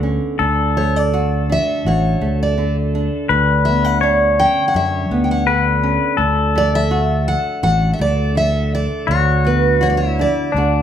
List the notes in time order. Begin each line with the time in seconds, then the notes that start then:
Already playing: D2 D3 B3 D4
0.03 C#4
0.39 D2 A4
0.77 A3 C#5
0.96 D5
1.14 F#4
1.50 D4 E5
1.85 A1 F#4 C#5
2.21 D2 A3
2.43 D5
2.58 D3
2.95 D4
3.29 D2 B4
3.65 B3 E5
3.85 F#5
4.01 D4 C#5
4.39 C#4 G5
4.68 F#5
4.74 F#2 D4 E5
5.10 D2 B3
5.24 G5
5.31 F#5
5.47 D3 B4
5.83 C#4
6.17 D2 A4
6.55 A3 D5
6.75 E5
6.91 F#4
7.28 F#5
7.63 A1 F#4 F#5
7.93 E5
7.99 D2 A3 D5
8.35 D3 E5
8.75 D5
9.07 D2 F#4 C#5
9.45 B3 B4
9.81 F#4 C#5
9.90 D5
9.97 C#5
10.08 E4
10.19 D4 D5
10.52 D2 D4
10.56 A3 D4 F#4